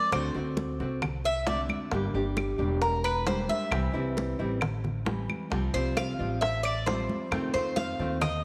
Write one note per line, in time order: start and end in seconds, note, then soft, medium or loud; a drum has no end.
0.00 0.12 F3 soft
0.00 0.12 A#3 soft
0.00 0.13 C4 medium
0.00 0.13 F4 medium
0.00 0.12 D5 loud
0.12 0.34 D2 medium
0.12 0.34 D3 medium
0.12 0.35 A3 medium
0.12 0.35 C4 medium
0.12 0.34 F#4 medium
0.12 0.34 C5 medium
0.12 high bongo medium
0.12 high conga soft
0.12 claves medium
0.35 0.78 D2 medium
0.35 0.80 A3 medium
0.35 0.80 C4 medium
0.35 0.79 F#4 medium
0.35 high bongo soft
0.35 high conga soft
0.57 high bongo medium
0.57 high conga medium
0.80 1.66 C2 medium
0.80 1.02 A3 medium
0.80 1.02 C4 medium
0.80 1.02 F#4 medium
0.80 high bongo soft
0.80 high conga soft
1.02 muted nylon-string guitar stroke medium
1.02 high bongo medium
1.02 high conga soft
1.02 low conga medium
1.02 claves medium
1.24 1.46 E5 loud
1.24 high bongo soft
1.24 high conga soft
1.47 1.90 D3 soft
1.47 1.92 A3 soft
1.47 1.92 C4 soft
1.47 1.93 F#4 medium
1.47 1.61 D5 medium
1.47 high bongo medium
1.47 low bongo medium
1.47 high conga medium
1.69 high conga medium
1.69 claves medium
1.91 2.13 G1 loud
1.91 2.14 D3 medium
1.91 2.14 G3 medium
1.91 2.14 A#3 medium
1.91 2.14 D4 medium
1.91 2.13 G4 medium
1.91 high bongo medium
1.91 high conga soft
2.14 2.57 G1 medium
2.14 2.60 G3 medium
2.14 2.59 A#3 medium
2.14 2.58 D4 medium
2.14 2.57 G4 medium
2.14 high conga soft
2.37 high bongo medium
2.37 high conga medium
2.37 claves medium
2.58 3.45 E1 loud
2.58 2.80 G3 medium
2.58 2.81 A#3 medium
2.58 2.81 D4 medium
2.58 2.81 G4 medium
2.58 high conga soft
2.82 3.04 A#4 medium
2.82 muted nylon-string guitar stroke medium
2.82 high bongo medium
2.82 high conga soft
3.04 3.26 B4 medium
3.04 high conga soft
3.04 claves medium
3.26 3.71 G3 soft
3.26 3.71 A#3 soft
3.26 3.72 D4 medium
3.26 3.72 G4 medium
3.26 3.49 C5 medium
3.26 high bongo medium
3.26 low bongo medium
3.26 high conga medium
3.49 4.13 E5 medium
3.49 high conga medium
3.71 3.93 C2 loud
3.71 3.93 C3 medium
3.71 3.94 E3 medium
3.71 3.94 G3 medium
3.71 3.93 C4 medium
3.71 3.92 E4 medium
3.71 high bongo medium
3.71 high conga soft
3.71 claves medium
3.93 4.37 C2 medium
3.93 4.39 E3 medium
3.93 4.39 G3 medium
3.93 4.39 C4 medium
3.93 4.38 E4 medium
3.93 high bongo soft
3.93 high conga soft
4.17 high bongo medium
4.17 high conga loud
4.39 5.26 A1 medium
4.39 4.60 E3 medium
4.39 4.61 G3 medium
4.39 4.61 C4 medium
4.39 4.61 E4 medium
4.39 high bongo soft
4.39 high conga soft
4.61 muted nylon-string guitar stroke medium
4.61 high bongo medium
4.61 high conga soft
4.61 low conga medium
4.61 claves medium
4.84 high bongo soft
4.84 high conga soft
4.84 low conga medium
5.05 5.50 E3 soft
5.05 5.50 G3 soft
5.05 5.51 C4 soft
5.05 5.51 E4 medium
5.05 high bongo medium
5.05 low bongo medium
5.05 high conga medium
5.29 high conga medium
5.29 claves medium
5.50 5.73 C2 medium
5.50 5.73 C3 medium
5.50 5.73 F3 medium
5.50 5.74 G3 medium
5.50 5.74 C4 medium
5.50 5.73 F4 medium
5.50 high bongo medium
5.50 high conga soft
5.74 6.17 C2 medium
5.74 6.20 F3 medium
5.74 6.19 G3 medium
5.74 6.19 C4 medium
5.74 6.18 F4 medium
5.74 5.96 C5 medium
5.97 6.39 F5 medium
5.97 high bongo medium
5.97 high conga loud
5.97 claves medium
6.19 7.05 A1 medium
6.19 6.41 F3 medium
6.19 6.41 G3 medium
6.19 6.41 C4 medium
6.19 6.41 F4 medium
6.19 high conga soft
6.41 6.63 E5 medium
6.41 muted nylon-string guitar stroke medium
6.41 high bongo medium
6.41 high conga soft
6.63 6.86 D5 loud
6.63 high conga soft
6.63 claves medium
6.86 7.31 F3 soft
6.86 7.32 G3 soft
6.86 7.32 C4 medium
6.86 7.32 F4 soft
6.86 7.50 C5 medium
6.86 high bongo medium
6.86 low bongo medium
6.86 high conga medium
7.09 high conga medium
7.31 7.53 F2 medium
7.31 7.53 C3 medium
7.31 7.54 D#3 medium
7.31 7.54 A3 medium
7.31 7.54 C4 medium
7.31 7.53 F4 medium
7.31 high bongo medium
7.31 high conga soft
7.31 claves medium
7.54 7.97 F2 medium
7.54 8.00 D#3 medium
7.54 7.99 A3 medium
7.54 7.99 C4 medium
7.54 7.98 F4 medium
7.54 7.76 C5 medium
7.54 high bongo soft
7.54 high conga soft
7.76 8.18 F5 medium
7.76 high bongo medium
7.76 high conga medium
7.99 8.44 D#2 medium
7.99 8.22 D#3 medium
7.99 8.22 A3 medium
7.99 8.21 C4 medium
7.99 8.21 F4 medium
7.99 high bongo soft
7.99 high conga soft
8.21 8.43 D#5 medium
8.21 muted nylon-string guitar stroke medium
8.21 high bongo medium
8.21 high conga soft
8.21 low conga medium
8.21 claves medium